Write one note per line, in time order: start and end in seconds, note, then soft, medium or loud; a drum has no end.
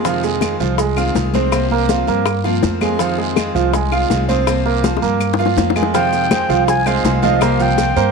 0.00 0.54 F2 medium
0.05 0.41 C3 medium
0.05 0.40 D#3 medium
0.05 0.20 F3 medium
0.05 0.41 G#3 medium
0.05 0.42 C4 medium
0.05 0.20 F4 medium
0.05 0.42 F4 medium
0.05 high bongo medium
0.05 high conga soft
0.05 long guiro medium
0.05 maracas medium
0.23 0.54 G#3 medium
0.23 0.54 G#4 medium
0.23 high bongo soft
0.23 high conga soft
0.23 maracas medium
0.41 0.77 D#3 soft
0.41 0.78 G#3 soft
0.41 0.78 C4 medium
0.41 0.78 F4 medium
0.41 high bongo medium
0.41 high conga medium
0.41 short guiro medium
0.41 claves medium
0.41 maracas medium
0.60 1.11 C2 medium
0.60 0.75 F3 medium
0.60 0.76 F4 medium
0.60 high bongo soft
0.60 high conga soft
0.60 short guiro medium
0.60 maracas soft
0.78 0.94 G#3 medium
0.78 0.94 G#4 medium
0.78 muted steel-string acoustic guitar stroke medium
0.78 high bongo medium
0.78 high conga soft
0.78 long guiro medium
0.78 maracas medium
0.96 1.14 D#3 medium
0.96 1.14 G#3 medium
0.96 1.15 C4 medium
0.96 1.14 F4 medium
0.96 1.27 F4 medium
0.96 1.28 F5 medium
0.96 high bongo soft
0.96 high conga soft
0.96 claves medium
0.96 maracas medium
1.15 2.01 C2 medium
1.15 1.33 D#3 medium
1.15 1.33 G#3 soft
1.15 1.33 C4 medium
1.15 1.32 F4 medium
1.15 high bongo soft
1.15 low bongo medium
1.15 high conga medium
1.15 short guiro medium
1.15 maracas medium
1.33 1.52 D#3 medium
1.33 1.52 G#3 medium
1.33 1.52 C4 medium
1.33 1.65 C4 medium
1.33 1.51 F4 medium
1.33 1.65 C5 medium
1.33 high conga medium
1.33 short guiro medium
1.33 maracas soft
1.52 1.88 C3 medium
1.52 1.88 F3 medium
1.52 1.88 A#3 medium
1.52 1.89 C4 medium
1.52 1.89 F4 medium
1.52 high bongo medium
1.52 high conga soft
1.52 long guiro medium
1.52 claves medium
1.52 maracas medium
1.71 1.86 A#3 medium
1.71 1.86 A#4 medium
1.71 high bongo soft
1.71 high conga soft
1.89 2.25 F3 medium
1.89 2.25 A#3 soft
1.89 2.25 C4 soft
1.89 2.05 F4 medium
1.89 2.26 F4 medium
1.89 2.05 F5 medium
1.89 high bongo medium
1.89 high conga medium
1.89 short guiro medium
1.89 maracas medium
2.07 2.59 G2 loud
2.07 2.38 A#3 medium
2.07 2.38 A#4 medium
2.07 high bongo soft
2.07 high conga soft
2.07 short guiro medium
2.07 maracas soft
2.26 muted steel-string acoustic guitar stroke medium
2.26 high bongo medium
2.26 high conga soft
2.26 long guiro medium
2.26 claves medium
2.26 maracas medium
2.44 2.62 F3 medium
2.44 2.62 A#3 medium
2.44 2.62 C4 medium
2.44 2.62 F4 medium
2.44 2.75 F4 medium
2.44 2.75 F5 medium
2.44 high bongo soft
2.44 high conga soft
2.63 3.49 F2 medium
2.63 2.81 F3 medium
2.63 2.81 A#3 soft
2.63 2.80 C4 medium
2.63 2.80 F4 medium
2.63 high bongo soft
2.63 low bongo medium
2.63 high conga medium
2.63 short guiro medium
2.63 maracas medium
2.81 3.00 F3 medium
2.81 2.96 G#3 medium
2.81 3.00 A#3 medium
2.81 2.99 C4 medium
2.81 2.99 F4 medium
2.81 2.97 G#4 medium
2.81 high conga medium
2.81 short guiro medium
2.81 claves medium
2.81 maracas soft
2.99 3.36 C3 medium
2.99 3.36 D#3 medium
2.99 3.15 F3 medium
2.99 3.36 G#3 medium
2.99 3.37 C4 medium
2.99 3.15 F4 medium
2.99 3.37 F4 medium
2.99 high bongo medium
2.99 high conga soft
2.99 long guiro medium
2.99 maracas medium
3.18 3.49 G#3 medium
3.18 3.49 G#4 medium
3.18 high bongo soft
3.18 high conga soft
3.36 3.72 D#3 soft
3.36 3.72 G#3 medium
3.36 3.73 C4 medium
3.36 3.73 F4 medium
3.36 high bongo medium
3.36 high conga medium
3.36 short guiro medium
3.36 claves medium
3.36 maracas medium
3.55 4.06 C2 medium
3.55 3.70 F3 medium
3.55 3.70 F4 medium
3.55 high bongo soft
3.55 high conga soft
3.55 short guiro medium
3.55 maracas soft
3.73 3.89 G#3 medium
3.73 3.89 G#4 medium
3.73 muted steel-string acoustic guitar stroke medium
3.73 high bongo medium
3.73 high conga soft
3.73 long guiro medium
3.73 maracas medium
3.92 4.09 D#3 medium
3.92 4.09 G#3 medium
3.92 4.10 C4 medium
3.92 4.10 F4 medium
3.92 4.22 F4 medium
3.92 4.22 F5 medium
3.92 high bongo soft
3.92 high conga soft
3.92 claves medium
4.10 4.96 C2 medium
4.10 4.28 D#3 medium
4.10 4.28 G#3 medium
4.10 4.28 C4 medium
4.10 4.28 F4 medium
4.10 high bongo soft
4.10 low bongo medium
4.10 high conga medium
4.10 short guiro medium
4.10 maracas medium
4.29 4.47 D#3 medium
4.29 4.47 G#3 medium
4.29 4.59 C4 medium
4.29 4.47 C4 medium
4.29 4.46 F4 medium
4.29 4.59 C5 medium
4.29 high conga medium
4.29 short guiro medium
4.29 maracas soft
4.47 4.83 C3 medium
4.47 4.83 F3 medium
4.47 4.83 A#3 medium
4.47 4.84 C4 medium
4.47 4.84 F4 medium
4.47 high bongo medium
4.47 high conga soft
4.47 long guiro medium
4.47 claves medium
4.47 maracas medium
4.66 4.81 A#3 medium
4.66 4.81 A#4 medium
4.66 high bongo soft
4.66 high conga soft
4.84 5.20 F3 soft
4.84 5.20 A#3 medium
4.84 5.20 C4 medium
4.84 4.99 F4 medium
4.84 5.20 F4 medium
4.84 4.99 F5 medium
4.84 high bongo medium
4.84 high conga loud
4.84 short guiro medium
4.84 maracas medium
4.97 high bongo medium
5.02 5.53 G2 medium
5.02 5.33 A#3 medium
5.02 5.33 A#4 medium
5.02 high conga soft
5.02 short guiro medium
5.02 maracas soft
5.20 muted steel-string acoustic guitar stroke medium
5.20 high conga soft
5.20 long guiro medium
5.20 claves medium
5.20 maracas medium
5.34 low bongo medium
5.39 5.56 F3 medium
5.39 5.56 A#3 medium
5.39 5.57 C4 medium
5.39 5.57 F4 medium
5.39 5.69 F4 medium
5.39 5.69 F5 medium
5.39 high conga soft
5.46 low bongo medium
5.57 6.43 F2 medium
5.57 5.75 F3 medium
5.57 5.75 A#3 medium
5.57 5.75 C4 soft
5.57 5.74 F4 medium
5.57 low bongo medium
5.57 high conga medium
5.57 short guiro medium
5.57 maracas medium
5.70 low bongo medium
5.76 5.94 F3 medium
5.76 5.91 G#3 medium
5.76 5.94 A#3 medium
5.76 5.94 C4 medium
5.76 5.94 F4 medium
5.76 5.91 G#4 medium
5.76 high conga medium
5.76 short guiro medium
5.76 claves medium
5.76 maracas soft
5.83 low bongo medium
5.94 6.30 C3 medium
5.94 6.30 D#3 medium
5.94 6.24 F3 medium
5.94 6.30 G#3 medium
5.94 6.31 C4 medium
5.94 6.25 F4 medium
5.94 6.31 F4 medium
5.94 6.25 F5 medium
5.94 6.64 G5 loud
5.94 high bongo medium
5.94 high conga soft
5.94 long guiro medium
5.94 maracas medium
6.13 high bongo soft
6.13 high conga soft
6.13 maracas medium
6.31 6.67 D#3 medium
6.31 6.46 G#3 medium
6.31 6.67 G#3 medium
6.31 6.68 C4 medium
6.31 6.68 F4 medium
6.31 6.46 G#4 medium
6.31 6.47 C5 medium
6.31 high bongo medium
6.31 high conga loud
6.31 short guiro medium
6.31 claves medium
6.31 maracas medium
6.49 7.01 C2 medium
6.49 6.80 F3 medium
6.49 6.80 F4 medium
6.49 6.80 F5 medium
6.49 high bongo soft
6.49 high conga soft
6.49 short guiro medium
6.49 maracas soft
6.68 6.88 G#5 loud
6.68 muted steel-string acoustic guitar stroke medium
6.68 high bongo medium
6.68 high conga soft
6.68 long guiro medium
6.68 maracas medium
6.86 7.03 D#3 medium
6.86 7.16 G#3 medium
6.86 7.04 G#3 medium
6.86 7.04 C4 medium
6.86 7.04 F4 medium
6.86 7.16 G#4 medium
6.86 7.17 C5 medium
6.86 7.25 F5 loud
6.86 high bongo soft
6.86 high conga soft
6.86 claves medium
6.86 maracas medium
7.04 7.90 C2 loud
7.04 7.22 D#3 medium
7.04 7.23 G#3 medium
7.04 7.22 C4 medium
7.04 7.21 F4 medium
7.04 high bongo soft
7.04 low bongo medium
7.04 high conga medium
7.04 short guiro medium
7.04 maracas medium
7.22 7.41 D#3 medium
7.22 7.38 F3 medium
7.22 7.41 G#3 medium
7.22 7.41 C4 medium
7.22 7.41 F4 medium
7.22 7.38 F4 medium
7.22 7.44 D#5 medium
7.22 7.38 F5 medium
7.22 high conga medium
7.22 short guiro medium
7.22 maracas soft
7.41 7.77 C3 medium
7.41 7.77 F3 medium
7.41 7.57 A#3 medium
7.41 7.77 A#3 medium
7.41 7.78 C4 medium
7.41 7.78 F4 medium
7.41 7.57 A#4 medium
7.41 7.57 C5 medium
7.41 7.63 F5 loud
7.41 high bongo medium
7.41 high conga soft
7.41 long guiro medium
7.41 claves medium
7.41 maracas medium
7.60 7.90 F3 medium
7.60 7.90 F4 medium
7.60 7.90 F5 medium
7.60 8.12 G5 medium
7.60 high bongo soft
7.60 high conga soft
7.60 maracas medium
7.78 8.12 F3 soft
7.78 8.12 A#3 medium
7.78 8.12 C4 medium
7.78 8.12 F4 medium
7.78 high bongo medium
7.78 high conga medium
7.78 short guiro medium
7.78 maracas medium
7.96 8.12 G2 loud
7.96 8.12 A#3 medium
7.96 8.12 A#4 medium
7.96 8.12 C5 medium
7.96 high bongo soft
7.96 high conga soft
7.96 short guiro medium
7.96 maracas soft